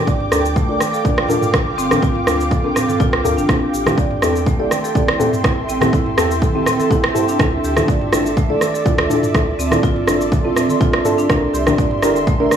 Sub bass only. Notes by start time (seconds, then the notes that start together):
0.07 G1
0.31 D2
0.69 D1
1.17 G1
1.54 G1
1.78 G1
2.03 G1
2.27 D2
3.13 C2
3.24 D2
3.37 G1
3.49 A1
3.73 A1
3.98 A1
4.22 E2
4.59 E1
5.08 A1
5.44 A1
5.68 A1
5.93 A1
6.17 E2
7.40 D2
7.64 D2
7.88 D2
8.12 A1
8.50 A1
8.98 D2
9.34 D2
9.58 D2
9.83 D2
10.07 A1
11.29 C2
11.54 C2
11.78 C2
12.02 G1
12.40 G1